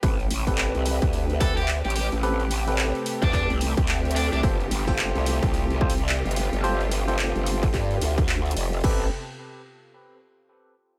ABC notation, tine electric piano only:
X:1
M:4/4
L:1/16
Q:"Swing 16ths" 1/4=109
K:Am
V:1 name="Tine electric piano"
[CGAB] z2 [CGAB]6- [CGAB] [CGAB] z4 z | [CGAB] z2 [CGAB]12- [CGAB] | [FGAc] z2 [FGAc]6- [FGAc] [FGAc] z4 z | [FGAc] z2 [FGAc]12- [FGAc] |
[CGAB]2 z12 z2 |]